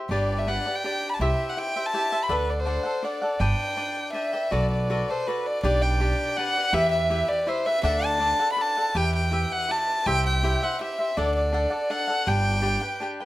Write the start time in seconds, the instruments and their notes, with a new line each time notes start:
Already playing: cavaquinho G4
0.09 upright bass G1, cavaquinho D4 G4 B4 D5, violin D5
0.38 violin E5
0.47 cavaquinho D4 G4 B4 D5, violin F#5
0.66 cavaquinho G4 B4 D5
0.75 violin G5
0.84 cavaquinho D4 G4 B4 D5
1.09 violin A5 B5
1.19 upright bass C2, cavaquinho E4 G4 C5 E5, violin E5
1.49 violin F#5
1.57 cavaquinho E4 G4 C5 E5, violin G5
1.76 cavaquinho G4 C5 E5
1.86 violin A5
1.94 cavaquinho E4 G4 C5 E5
2.12 cavaquinho G4 C5 E5
2.23 violin B5
2.29 upright bass D2, cavaquinho D4 A4 D5 F#5, violin B4
2.49 violin D5
2.59 violin C5
2.65 cavaquinho D4 A4 D5 F#5
2.83 cavaquinho A4 D5 F#5
3.02 cavaquinho D4 A4 D5 F#5, violin D5
3.22 cavaquinho A4 D5 F#5
3.40 upright bass G1, cavaquinho D4 B4 D5 G5, violin G5
3.77 cavaquinho D4 B4 D5 G5
4.13 cavaquinho D4 B4 D5 G5, violin E5
4.33 cavaquinho B4 D5 G5
4.51 upright bass B1, cavaquinho F#4 A4 B4 D5, violin D5
4.71 violin D5
4.90 cavaquinho F#4 A4 B4 D5
5.09 cavaquinho A4 B4 D5, violin C5
5.27 cavaquinho F#4 A4 B4 D5, violin B4
5.46 violin D5
5.63 upright bass B1, cavaquinho D4 G4 B4 D5, violin D5
5.82 violin G5
6.00 cavaquinho D4 G4 B4 D5
6.36 cavaquinho D4 G4 B4 D5, violin F#5
6.56 cavaquinho G4 B4 D5
6.73 upright bass E2, cavaquinho E4 G4 B4 E5, violin E5
6.91 violin E5
7.10 cavaquinho E4 G4 B4 E5
7.28 cavaquinho G4 B4 E5, violin D5
7.47 cavaquinho E4 G4 B4 E5, violin C5
7.66 cavaquinho G4 B4 E5, violin E5
7.83 upright bass D2, cavaquinho D4 A4 D5 F#5, violin E5
8.05 violin A5
8.20 cavaquinho D4 A4 D5 F#5
8.39 cavaquinho A4 D5 F#5
8.52 violin B5
8.56 cavaquinho D4 A4 D5 F#5
8.61 violin A5
8.77 cavaquinho A4 D5 F#5
8.95 upright bass E2, cavaquinho E4 G4 B4 E5, violin G5
9.16 violin G5
9.31 cavaquinho E4 G4 B4 E5
9.52 violin F#5
9.69 cavaquinho E4 G4 B4 E5, violin A5
10.06 upright bass C2, cavaquinho E4 G4 C5 E5, violin G5
10.26 violin G5
10.43 cavaquinho E4 G4 C5 E5
10.62 cavaquinho G4 C5 E5, violin F#5
10.80 cavaquinho E4 G4 C5 E5, violin E5
10.99 cavaquinho G4 C5 E5
11.17 upright bass D2, cavaquinho D4 A4 D5 F#5, violin D5
11.35 violin D5
11.53 cavaquinho D4 A4 D5 F#5
11.70 cavaquinho A4 D5 F#5
11.90 cavaquinho D4 A4 D5 F#5, violin F#5
12.08 cavaquinho A4 D5 F#5
12.27 upright bass G1, cavaquinho D4 G4 B4 G5, violin G5
12.62 cavaquinho D4 G4 B4 G5
12.81 cavaquinho G4 B4 G5
13.00 cavaquinho D4 G4 B4 G5
13.20 cavaquinho G4 B4 G5